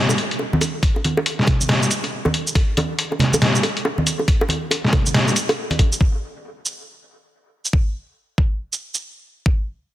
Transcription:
0.09 high bongo, shaker
0.18 closed hi-hat
0.31 closed hi-hat
0.39 high bongo
0.53 high conga
0.61 closed hi-hat, high bongo, shaker
0.83 kick, closed hi-hat
0.96 high bongo
1.04 closed hi-hat, high conga
1.17 high bongo
1.26 closed hi-hat
1.39 snare
1.47 kick, closed hi-hat, high bongo, low conga
1.61 high conga, shaker
1.69 snare, closed hi-hat, high bongo
1.82 shaker
1.91 closed hi-hat, shaker
2.03 closed hi-hat, high bongo
2.25 high bongo, high conga
2.34 closed hi-hat
2.47 shaker
2.55 kick, closed hi-hat, high bongo
2.77 closed hi-hat, high bongo, high conga
2.99 closed hi-hat
3.12 high bongo
3.19 snare, closed hi-hat, low conga
3.33 high bongo, high conga, shaker
3.42 snare, closed hi-hat
3.55 shaker
3.63 closed hi-hat, high bongo
3.77 closed hi-hat
3.85 high bongo
3.98 high conga
4.07 closed hi-hat, shaker
4.19 high bongo
4.28 kick, closed hi-hat
4.41 high bongo
4.49 closed hi-hat, high conga
4.71 closed hi-hat, high bongo
4.84 snare
4.93 kick, closed hi-hat, high bongo, low conga
5.06 high conga, shaker
5.14 snare, closed hi-hat
5.28 high bongo, shaker
5.36 closed hi-hat, shaker
5.49 closed hi-hat, high bongo
5.70 closed hi-hat, high conga
5.79 kick, closed hi-hat, high bongo
5.92 shaker
6.01 kick
6.66 shaker
7.65 shaker
7.73 kick
8.38 kick
8.73 shaker
8.94 shaker
9.46 kick

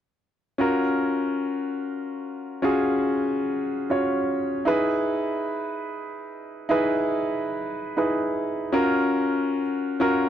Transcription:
0.58 C#4 F4 F#4 A#4
2.62 C#4 F4 F#4 G#4
3.90 C#4 F4 F#4 C#5
4.65 D#4 E4 G#4 B4
6.69 D#4 E4 G#4 B4
7.97 D#4 E4 G#4 B4
8.72 C#4 F4 F#4 A#4
10.00 C#4 F4 F#4 A#4

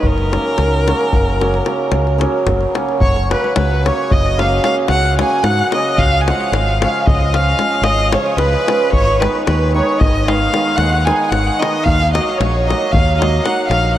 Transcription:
0.03 F#1 A#4, davul low
0.18 davul high
0.31 C#3 F#3 A#3 C#4, davul high
0.58 C#2, davul high
0.88 C#3 F#3 A#3 C#4, davul high
1.01 davul high
1.13 F#1, davul low
1.40 C#3 F#3 A#3 C#4, davul high
1.54 davul high
1.65 C#3 F#3 A#3 C#4, davul high
1.92 C#2, davul high
2.07 davul high
2.18 C#3 F#3 A#3 C#4, davul high
2.46 F#1, davul high, davul low
2.61 davul high
2.74 C#3 F#3 A#3 C#4, davul high
2.89 davul high
3.00 F#1 C#5, davul low
3.16 davul high
3.29 C#3 F#3 A#3 C#4 B4, davul high
3.44 davul high
3.55 C#2 B4, davul high
3.85 C#3 F#3 A#3 C#4 C#5, davul high
4.10 F#1 D#5, davul low
4.26 davul high
4.38 C#3 F#3 A#3 C#4 F5, davul high
4.63 C#3 F#3 A#3 C#4 F5, davul high
4.88 C#2 F#5, davul high
5.03 davul high
5.17 C#3 F#3 A#3 C#4 G#5, davul high
5.30 davul high
5.43 G#2 F#5, davul high
5.59 davul high
5.72 C#3 F#3 A#3 C#4 D#5, davul high
5.96 C#2 F5, davul low
6.21 G#5
6.28 C#3 F3 G#3 C#4 F#5, davul high
6.40 davul high
6.51 G#1 F5, davul high
6.80 C#3 F5, davul high
6.84 F3 G#3 C#4
7.06 C#2 D#5, davul low
7.21 davul high
7.34 C#3 F3 G#3 C#4 F5, davul high
7.59 C#3 F3 G#3 C#4, davul high
7.82 G#1 D#5, davul high
7.99 davul high
8.11 C#3 F3 G#3 C#4 C#5, davul high
8.26 davul high
8.37 C#2 B4, davul high
8.53 davul high
8.67 C#3 F3 G#3 C#4, davul high
8.90 G#1 C#5, davul low
9.08 davul high
9.19 D#3 G#3 B3 D#4 B4, davul high
9.35 davul high
9.44 D#2 B4, davul high
9.74 D#3 G#3 B3 D#4 C#5
9.98 G#1 D#5, davul low
10.15 davul high
10.27 D#3 G#3 B3 D#4 F5, davul high
10.52 D#3 G#3 B3 D#4, davul high
10.76 D#2 F#5, davul high
10.93 davul high
11.05 D#3 G#3 B3 G#5, davul high
11.09 D#4
11.28 G#1 F#5
11.32 davul high
11.47 davul high
11.59 D#3 G#3 B3 D#4 D#5, davul high
11.84 D#2 F5, davul low
12.02 davul high
12.13 F#3 A#3 D#4 F#4 D#5, davul high
12.29 davul high
12.37 A#1 C#5, davul high
12.66 F#3 A#3 D#4 F#4 D#5
12.70 davul high
12.82 davul high
12.90 D#2 F5
12.95 davul low
13.15 F#3 D#5 F5
13.19 A#3 D#4 F#4, davul high
13.43 F#3 A#3 D#4 F#4 F#5, davul high
13.66 A#1 F5
13.71 davul high

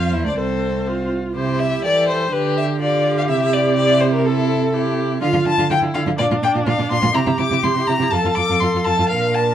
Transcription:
Already playing: F2 F4 C5 F5
0.12 E2 E4 E5
0.24 D2 D4 D5
0.37 C2 C4 A4 C5
0.87 F4
1.34 C3 E4 G4 C5
1.60 E5
1.84 E3 G4 A4 D5
2.08 C5
2.32 D3 G4 B4
2.57 E5
2.79 F4 G4 D5
3.17 F5
3.29 C3 E4 E5
3.42 E5
3.53 D5
3.76 D5
4.01 C5
4.13 A#4
4.25 E4 A4
4.73 E4 G4
5.21 D3 F4 F5
5.33 D3 F4
5.45 D3 F4 A5
5.58 D3 F4
5.70 D3 E4 F4 G5
5.81 D3 F4
5.94 D3 F4 F5
6.07 D3 F4
6.18 A#2 D4 F4 D5
6.31 A#2 F4
6.43 A#2 F4 G5
6.55 A#2 F4
6.67 A#2 F4 F5
6.78 A#2 F4
6.91 A#2 F4 C6
7.02 A#2 F4
7.13 C3 E4 G4 A#5
7.26 C3 E4
7.38 C3 E4 D6
7.51 C3 E4
7.63 C3 E4 C6
7.75 C3 E4
7.87 C3 E4 A#5
7.99 C3 E4
8.11 F2 F4 A4 A5
8.24 F2 F4
8.35 F2 F4 D6
8.49 F2 F4
8.60 F2 F4 C6
8.74 F2 F4
8.85 F2 F4 A5
8.99 F2 F4
9.09 A#2 D4 A#4 F5
9.34 A5

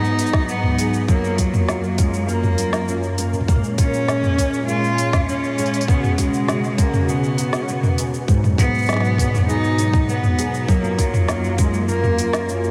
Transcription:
Already playing: G#2 F#3 B3 D#4 G#4
0.04 shaker
0.19 D#4, open hi-hat, shaker
0.26 shaker
0.33 kick, snare
0.49 B3, shaker
0.63 mid tom
0.79 G#4, open hi-hat, shaker
0.94 shaker
1.08 F#2 F#3 A#3 F4, kick, shaker
1.24 shaker
1.38 F#3 F4, kick, open hi-hat, shaker
1.54 mid tom, shaker
1.68 A#4, snare, shaker
1.84 shaker
1.98 G#3 C#4, kick, open hi-hat, shaker
2.14 shaker
2.28 A#3 A#4, shaker
2.43 mid tom, shaker
2.58 F4, open hi-hat, shaker
2.73 snare, shaker
2.88 C#4, shaker
3.03 shaker
3.18 A#4, open hi-hat, shaker
3.33 mid tom, shaker
3.41 mid tom
3.48 A#2 G#3 A#3 C#4, kick, mid tom, shaker
3.56 mid tom
3.64 shaker
3.78 C#4 F4, kick, open hi-hat, shaker
3.94 shaker
4.08 G#4, snare, shaker
4.23 mid tom, shaker
4.38 C#4, kick, open hi-hat, shaker
4.54 shaker
4.68 F4 G#4, shaker
4.84 shaker
4.98 F4, open hi-hat, shaker
5.13 kick, snare, mid tom, shaker
5.28 C#4, shaker
5.44 shaker
5.58 G#4, open hi-hat, shaker
5.66 open hi-hat
5.74 open hi-hat, shaker
5.81 open hi-hat
5.88 B2 C#3 B3 F#4, kick, shaker
6.04 mid tom, shaker
6.18 G#3 F#4, kick, open hi-hat, shaker
6.34 shaker
6.48 G#4, snare, shaker
6.64 shaker
6.78 A#3, kick, open hi-hat, shaker
6.94 mid tom, shaker
7.08 B3 G#4, shaker
7.24 shaker
7.38 F#4, open hi-hat, shaker
7.53 snare, shaker
7.62 C#4
7.68 B3, shaker
7.80 A#3, mid tom, shaker
7.89 B3
7.98 G#4, open hi-hat, shaker
8.14 shaker
8.28 G#2 F#3, kick, shaker
8.44 mid tom, shaker
8.58 B3 D#4, kick, open hi-hat, shaker
8.75 shaker
8.79 shaker
8.82 shaker
8.86 G#4, snare, shaker
8.89 snare, shaker
8.96 snare
9.00 snare
9.05 shaker
9.18 B3, kick, open hi-hat, shaker
9.34 mid tom, shaker
9.48 D#4 G#4, shaker
9.64 shaker
9.78 D#4, open hi-hat, shaker
9.93 kick, shaker
10.08 B3, shaker
10.23 mid tom, shaker
10.39 G#4, open hi-hat, shaker
10.54 shaker
10.68 F#2 F#3 A#3 F4, kick, shaker
10.84 shaker
10.98 F#3 F4, kick, open hi-hat, shaker
11.14 mid tom, shaker
11.28 A#4, snare, shaker
11.44 shaker
11.58 G#3 C#4, kick, open hi-hat, shaker
11.74 shaker
11.88 A#3 A#4, shaker
12.04 mid tom, shaker
12.19 F4, open hi-hat, shaker
12.33 snare, shaker
12.49 C#4, shaker
12.64 shaker

